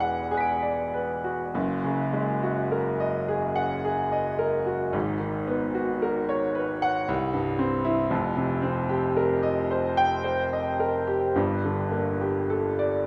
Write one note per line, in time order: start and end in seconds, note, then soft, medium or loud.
0.00 1.51 E1 medium
0.00 1.51 E2 medium
0.00 1.57 B2 soft
0.00 1.57 G#3 medium
0.00 1.24 F#4 soft
0.00 0.19 G#4 soft
0.00 0.94 B4 soft
0.00 0.62 D5 soft
0.00 0.51 F#5 medium
0.31 0.82 G#4 medium
0.31 1.51 G#5 soft
0.31 1.52 F#6 soft
0.37 1.54 B6 soft
0.37 1.55 D7 soft
0.62 1.13 D5 soft
0.94 1.43 B4 medium
1.24 1.55 F#4 soft
1.54 4.90 F#1 medium
1.54 4.90 F#2 medium
1.84 2.31 C#3 medium
2.13 2.59 G#3 medium
2.43 2.88 F#4 medium
2.72 3.17 A#4 medium
3.00 3.45 D#5 medium
3.28 3.73 G#4 medium
3.56 4.00 F#5 medium
3.85 4.29 G#4 medium
4.12 4.56 D#5 medium
4.39 4.83 A#4 medium
4.66 4.94 F#4 soft
4.93 7.04 G#1 medium
4.93 7.04 G#2 medium
5.20 5.64 D#3 soft
5.47 5.91 B3 medium
5.75 6.19 F#4 medium
6.02 6.46 A#4 medium
6.29 6.72 C#5 medium
6.55 6.98 B4 medium
6.82 7.08 F#5 medium
7.08 8.08 C2 medium
7.33 7.75 G2 medium
7.59 8.01 C4 medium
7.85 8.11 E4 medium
8.10 11.30 F1 medium
8.10 11.30 F2 medium
8.37 8.79 C3 medium
8.62 9.05 C4 medium
8.89 9.32 G4 medium
9.17 9.59 A#4 medium
9.43 9.86 D#5 medium
9.71 10.13 C5 medium
9.97 10.41 G5 medium
10.24 10.68 C5 medium
10.53 10.96 D#5 medium
10.80 11.24 A#4 medium
11.07 11.35 G4 medium
11.35 13.07 G1 medium
11.35 13.07 G2 medium
11.65 12.10 D3 medium
11.92 12.38 A#3 medium
12.21 12.67 G4 soft
12.50 12.96 A4 medium
12.79 13.07 D5 medium